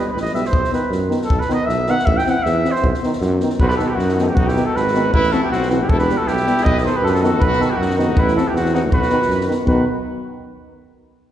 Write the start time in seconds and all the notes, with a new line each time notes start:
Already playing: D#5
0.10 B4
0.14 A1, snare
0.21 D#5
0.26 snare
0.33 B1 G3 B3 E5, snare
0.45 C5, snare
0.52 B1, kick
0.64 snare
0.70 D#3 B3 B4, snare
0.90 F#2, snare
1.09 D#3 B3, snare
1.22 A4, snare
1.30 B1, kick
1.39 B4, snare
1.48 D#3 B3, snare
1.53 D#5
1.66 B1 E5, snare
1.87 D#3 B3 F#5, snare
1.99 snare
2.06 A1 E5, kick
2.17 G5, snare
2.25 E3 C4 G5, snare
2.30 F#5
2.43 E2 E5, snare
2.63 E3 C4, snare
2.71 C5
2.76 snare
2.82 B1, kick
2.94 snare
3.02 D#3 B3, snare
3.13 snare
3.21 F#2, snare
3.40 D#3 B3, snare
3.50 snare
3.60 B1 F#4 B4 C5, kick
3.67 G4 A4 B4, snare
3.77 D#3 B3 A4, snare
3.81 F#4
3.88 G4
3.93 E4 F#4
3.98 F#2, snare
4.02 D#4
4.09 snare
4.14 F#4
4.18 D#3 B3 D#4, snare
4.23 A4
4.27 F#4 G4
4.34 B1 D#4 F#4, kick
4.46 E4 G4, snare
4.55 D#3 B3, snare
4.66 F#4 A4
4.75 G#1 F#4 B4, snare
4.88 snare
4.94 D#3 B3, snare
5.13 A1 E4 B4, kick
5.23 snare
5.31 E3 C4 F#4 A4, snare
5.43 E4 G4
5.51 B1 C4 F#4, snare
5.62 snare
5.69 E3 C4 E4 F#4 G4, snare
5.81 E4 G4
5.88 E1 E4 A4, kick
5.99 G4 B4, snare
6.09 G3 B3, snare
6.17 F#4 A4
6.27 B1 E4 G4, snare
6.37 snare
6.46 G3 B3, snare
6.57 snare
6.64 B1 B4 D#5, kick
6.78 D#5, snare
6.83 D#3 B3 B4 C5, snare
6.88 A4
6.96 G4 B4
7.02 F#2 F#4 A4
7.06 G4 B4, snare
7.14 F#4 A4, snare
7.21 D#3 B3 F#4 A4, snare
7.39 B1 B4, kick
7.45 F#4
7.53 snare
7.59 D#3 B3 A4, snare
7.64 F#4
7.70 E4 G4
7.77 F#2 F#4
7.82 D#4, snare
7.90 snare
7.96 D#3 B3 D#4 F#4, snare
8.15 A1 B4, kick
8.20 E4
8.28 snare
8.34 E3 C4 F#4 A4
8.38 snare
8.48 E4 G4
8.54 E2 C4 F#4, snare
8.65 snare
8.73 E3 C4 D#4 F#4, snare
8.90 B1 F#4 B4, kick
9.02 snare
9.10 D#3 B3, snare
9.22 snare
9.28 F#2, snare
9.41 snare
9.47 D#3 B3
9.51 snare
9.65 B1 D#3 B3 F#4 B4, kick